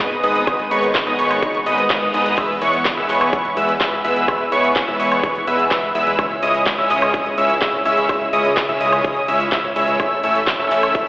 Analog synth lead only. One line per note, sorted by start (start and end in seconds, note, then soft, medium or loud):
0.00 0.16 D#6 medium
0.23 0.34 D#6 loud
0.35 0.44 D#6 medium
0.47 0.64 D#6 loud
0.71 0.87 C#6 loud
1.07 1.16 D#6 loud
1.19 1.40 C#6 medium
1.42 1.59 C#6 medium
1.66 1.83 D#6 loud
1.90 2.06 D#6 medium
2.14 2.24 D#6 loud
2.26 2.35 D#6 medium
2.38 2.54 E6 loud
2.62 2.78 C#6 loud
2.97 3.06 E6 loud
3.09 3.30 C#6 medium
3.33 3.49 C#6 medium
3.57 3.73 E6 loud
3.81 3.97 E6 medium
4.04 4.15 E6 loud
4.16 4.25 E6 medium
4.28 4.44 E6 loud
4.52 4.68 C#6 loud
4.88 4.97 E6 loud
5.00 5.21 C#6 medium
5.23 5.40 C#6 loud
5.47 5.64 E6 loud
5.71 5.87 E6 medium
5.95 6.05 E6 loud
6.07 6.16 E6 medium
6.19 6.35 E6 loud
6.42 6.59 D#6 loud
6.78 6.87 E6 loud
6.90 7.11 D#6 medium
7.14 7.30 D#6 medium
7.38 7.54 E6 loud
7.62 7.78 E6 medium
7.85 7.95 E6 loud
7.97 8.06 E6 medium
8.09 8.25 E6 loud
8.33 8.49 D#6 loud
8.69 8.78 E6 loud
8.81 9.02 D#6 medium
9.04 9.21 D#6 loud
9.28 9.44 E6 loud
9.52 9.68 E6 medium
9.76 9.86 E6 loud
9.88 9.97 E6 medium
10.00 10.16 E6 loud
10.23 10.40 E6 loud
10.59 10.68 E6 loud
10.71 10.92 E6 medium
10.95 11.08 E6 medium